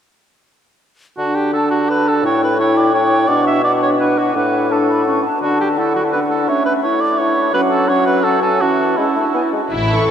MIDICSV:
0, 0, Header, 1, 9, 480
1, 0, Start_track
1, 0, Key_signature, 2, "major"
1, 0, Tempo, 362100
1, 1556, Time_signature, 3, 2, 24, 8
1, 2508, Tempo, 352734
1, 11148, Tempo, 368324
1, 13580, End_track
2, 0, Start_track
2, 0, Title_t, "Violin section"
2, 0, Program_c, 0, 48
2, 13312, Note_on_c, 0, 85, 32
2, 13580, Note_off_c, 0, 85, 0
2, 13580, End_track
3, 0, Start_track
3, 0, Title_t, "Flute"
3, 0, Program_c, 1, 73
3, 1562, Note_on_c, 1, 81, 32
3, 2006, Note_off_c, 1, 81, 0
3, 2035, Note_on_c, 1, 81, 33
3, 2968, Note_off_c, 1, 81, 0
3, 2991, Note_on_c, 1, 79, 40
3, 3454, Note_off_c, 1, 79, 0
3, 3461, Note_on_c, 1, 79, 39
3, 3914, Note_off_c, 1, 79, 0
3, 3922, Note_on_c, 1, 79, 42
3, 4404, Note_on_c, 1, 78, 47
3, 4424, Note_off_c, 1, 79, 0
3, 4880, Note_off_c, 1, 78, 0
3, 4888, Note_on_c, 1, 78, 39
3, 5352, Note_off_c, 1, 78, 0
3, 5360, Note_on_c, 1, 78, 35
3, 5839, Note_off_c, 1, 78, 0
3, 5855, Note_on_c, 1, 78, 34
3, 6328, Note_off_c, 1, 78, 0
3, 6337, Note_on_c, 1, 81, 37
3, 6418, Note_off_c, 1, 81, 0
3, 6585, Note_on_c, 1, 83, 38
3, 6814, Note_off_c, 1, 83, 0
3, 6823, Note_on_c, 1, 85, 39
3, 7066, Note_off_c, 1, 85, 0
3, 7076, Note_on_c, 1, 81, 31
3, 7311, Note_off_c, 1, 81, 0
3, 7319, Note_on_c, 1, 81, 33
3, 7799, Note_on_c, 1, 78, 33
3, 7819, Note_off_c, 1, 81, 0
3, 8281, Note_off_c, 1, 78, 0
3, 8288, Note_on_c, 1, 78, 32
3, 8765, Note_on_c, 1, 76, 37
3, 8785, Note_off_c, 1, 78, 0
3, 9355, Note_off_c, 1, 76, 0
3, 9721, Note_on_c, 1, 76, 38
3, 10161, Note_off_c, 1, 76, 0
3, 10169, Note_on_c, 1, 78, 48
3, 10620, Note_off_c, 1, 78, 0
3, 10667, Note_on_c, 1, 78, 50
3, 11131, Note_off_c, 1, 78, 0
3, 11139, Note_on_c, 1, 78, 40
3, 11388, Note_on_c, 1, 80, 36
3, 11408, Note_off_c, 1, 78, 0
3, 11627, Note_on_c, 1, 81, 33
3, 11646, Note_off_c, 1, 80, 0
3, 12104, Note_off_c, 1, 81, 0
3, 12119, Note_on_c, 1, 81, 34
3, 12586, Note_off_c, 1, 81, 0
3, 12594, Note_on_c, 1, 80, 27
3, 12673, Note_off_c, 1, 80, 0
3, 13580, End_track
4, 0, Start_track
4, 0, Title_t, "Cor anglais"
4, 0, Program_c, 2, 69
4, 1559, Note_on_c, 2, 66, 47
4, 1792, Note_on_c, 2, 67, 47
4, 1812, Note_off_c, 2, 66, 0
4, 2026, Note_off_c, 2, 67, 0
4, 2034, Note_on_c, 2, 69, 51
4, 2257, Note_off_c, 2, 69, 0
4, 2265, Note_on_c, 2, 66, 51
4, 2512, Note_on_c, 2, 71, 61
4, 2532, Note_off_c, 2, 66, 0
4, 2767, Note_on_c, 2, 69, 50
4, 2787, Note_off_c, 2, 71, 0
4, 2993, Note_off_c, 2, 69, 0
4, 3001, Note_on_c, 2, 73, 66
4, 3228, Note_off_c, 2, 73, 0
4, 3247, Note_on_c, 2, 71, 60
4, 3467, Note_off_c, 2, 71, 0
4, 3477, Note_on_c, 2, 73, 64
4, 3706, Note_on_c, 2, 74, 59
4, 3727, Note_off_c, 2, 73, 0
4, 3935, Note_off_c, 2, 74, 0
4, 3941, Note_on_c, 2, 73, 66
4, 4400, Note_on_c, 2, 74, 75
4, 4421, Note_off_c, 2, 73, 0
4, 4641, Note_off_c, 2, 74, 0
4, 4653, Note_on_c, 2, 76, 62
4, 4877, Note_off_c, 2, 76, 0
4, 4885, Note_on_c, 2, 74, 59
4, 4991, Note_off_c, 2, 74, 0
4, 5136, Note_on_c, 2, 73, 52
4, 5242, Note_off_c, 2, 73, 0
4, 5374, Note_on_c, 2, 71, 54
4, 5625, Note_on_c, 2, 66, 48
4, 5646, Note_off_c, 2, 71, 0
4, 5859, Note_off_c, 2, 66, 0
4, 5870, Note_on_c, 2, 71, 52
4, 6355, Note_on_c, 2, 69, 40
4, 6376, Note_off_c, 2, 71, 0
4, 7082, Note_off_c, 2, 69, 0
4, 7312, Note_on_c, 2, 66, 54
4, 7541, Note_off_c, 2, 66, 0
4, 7564, Note_on_c, 2, 67, 43
4, 7672, Note_off_c, 2, 67, 0
4, 7803, Note_on_c, 2, 69, 45
4, 8029, Note_off_c, 2, 69, 0
4, 8037, Note_on_c, 2, 66, 40
4, 8147, Note_off_c, 2, 66, 0
4, 8262, Note_on_c, 2, 71, 55
4, 8375, Note_off_c, 2, 71, 0
4, 8510, Note_on_c, 2, 69, 49
4, 8756, Note_on_c, 2, 73, 60
4, 8776, Note_off_c, 2, 69, 0
4, 8977, Note_off_c, 2, 73, 0
4, 8986, Note_on_c, 2, 71, 53
4, 9097, Note_off_c, 2, 71, 0
4, 9230, Note_on_c, 2, 73, 63
4, 9471, Note_on_c, 2, 74, 58
4, 9491, Note_off_c, 2, 73, 0
4, 9716, Note_on_c, 2, 73, 67
4, 9736, Note_off_c, 2, 74, 0
4, 10183, Note_off_c, 2, 73, 0
4, 10191, Note_on_c, 2, 71, 76
4, 10297, Note_off_c, 2, 71, 0
4, 10420, Note_on_c, 2, 69, 59
4, 10663, Note_on_c, 2, 73, 68
4, 10684, Note_off_c, 2, 69, 0
4, 10890, Note_off_c, 2, 73, 0
4, 10898, Note_on_c, 2, 71, 65
4, 11139, Note_on_c, 2, 69, 69
4, 11159, Note_off_c, 2, 71, 0
4, 11373, Note_off_c, 2, 69, 0
4, 11381, Note_on_c, 2, 69, 61
4, 11628, Note_on_c, 2, 66, 56
4, 11648, Note_off_c, 2, 69, 0
4, 12100, Note_on_c, 2, 64, 41
4, 12119, Note_off_c, 2, 66, 0
4, 12830, Note_off_c, 2, 64, 0
4, 13580, End_track
5, 0, Start_track
5, 0, Title_t, "Violin section"
5, 0, Program_c, 3, 48
5, 13080, Note_on_c, 3, 64, 50
5, 13518, Note_off_c, 3, 64, 0
5, 13580, End_track
6, 0, Start_track
6, 0, Title_t, "Clarinet"
6, 0, Program_c, 4, 71
6, 1564, Note_on_c, 4, 62, 35
6, 2007, Note_off_c, 4, 62, 0
6, 2034, Note_on_c, 4, 62, 37
6, 2993, Note_on_c, 4, 64, 40
6, 3014, Note_off_c, 4, 62, 0
6, 3447, Note_off_c, 4, 64, 0
6, 3455, Note_on_c, 4, 64, 45
6, 3907, Note_off_c, 4, 64, 0
6, 3915, Note_on_c, 4, 64, 40
6, 4386, Note_off_c, 4, 64, 0
6, 4394, Note_on_c, 4, 62, 46
6, 4855, Note_off_c, 4, 62, 0
6, 4863, Note_on_c, 4, 62, 39
6, 5340, Note_off_c, 4, 62, 0
6, 5348, Note_on_c, 4, 62, 38
6, 5833, Note_off_c, 4, 62, 0
6, 5849, Note_on_c, 4, 62, 35
6, 6329, Note_off_c, 4, 62, 0
6, 6335, Note_on_c, 4, 62, 31
6, 6809, Note_off_c, 4, 62, 0
6, 6817, Note_on_c, 4, 61, 32
6, 7063, Note_off_c, 4, 61, 0
6, 7320, Note_on_c, 4, 62, 33
6, 7802, Note_on_c, 4, 64, 30
6, 7823, Note_off_c, 4, 62, 0
6, 8283, Note_off_c, 4, 64, 0
6, 8296, Note_on_c, 4, 62, 34
6, 8765, Note_on_c, 4, 61, 35
6, 8786, Note_off_c, 4, 62, 0
6, 9255, Note_on_c, 4, 64, 36
6, 9275, Note_off_c, 4, 61, 0
6, 9721, Note_off_c, 4, 64, 0
6, 9729, Note_on_c, 4, 64, 40
6, 10185, Note_off_c, 4, 64, 0
6, 10207, Note_on_c, 4, 61, 42
6, 10640, Note_off_c, 4, 61, 0
6, 10674, Note_on_c, 4, 61, 49
6, 11143, Note_off_c, 4, 61, 0
6, 11164, Note_on_c, 4, 61, 44
6, 11618, Note_off_c, 4, 61, 0
6, 11625, Note_on_c, 4, 61, 36
6, 12094, Note_off_c, 4, 61, 0
6, 12107, Note_on_c, 4, 61, 33
6, 12352, Note_on_c, 4, 62, 30
6, 12372, Note_off_c, 4, 61, 0
6, 12600, Note_on_c, 4, 64, 30
6, 12620, Note_off_c, 4, 62, 0
6, 12838, Note_off_c, 4, 64, 0
6, 13580, End_track
7, 0, Start_track
7, 0, Title_t, "Viola section"
7, 0, Program_c, 5, 48
7, 13316, Note_on_c, 5, 52, 32
7, 13318, Note_on_c, 5, 69, 30
7, 13580, Note_off_c, 5, 52, 0
7, 13580, Note_off_c, 5, 69, 0
7, 13580, End_track
8, 0, Start_track
8, 0, Title_t, "Bassoon"
8, 0, Program_c, 6, 70
8, 1566, Note_on_c, 6, 50, 34
8, 2980, Note_on_c, 6, 45, 43
8, 3000, Note_off_c, 6, 50, 0
8, 4387, Note_off_c, 6, 45, 0
8, 4395, Note_on_c, 6, 47, 44
8, 5816, Note_off_c, 6, 47, 0
8, 5857, Note_on_c, 6, 45, 34
8, 7053, Note_off_c, 6, 45, 0
8, 7315, Note_on_c, 6, 50, 34
8, 8707, Note_off_c, 6, 50, 0
8, 8775, Note_on_c, 6, 57, 35
8, 10165, Note_off_c, 6, 57, 0
8, 10186, Note_on_c, 6, 54, 49
8, 11635, Note_on_c, 6, 52, 37
8, 11654, Note_off_c, 6, 54, 0
8, 12060, Note_off_c, 6, 52, 0
8, 12109, Note_on_c, 6, 56, 40
8, 12216, Note_off_c, 6, 56, 0
8, 12344, Note_on_c, 6, 57, 27
8, 12454, Note_off_c, 6, 57, 0
8, 12581, Note_on_c, 6, 59, 36
8, 12693, Note_off_c, 6, 59, 0
8, 12830, Note_on_c, 6, 56, 29
8, 12939, Note_off_c, 6, 56, 0
8, 13580, End_track
9, 0, Start_track
9, 0, Title_t, "Double bass section"
9, 0, Program_c, 7, 48
9, 13074, Note_on_c, 7, 33, 42
9, 13493, Note_off_c, 7, 33, 0
9, 13580, End_track
0, 0, End_of_file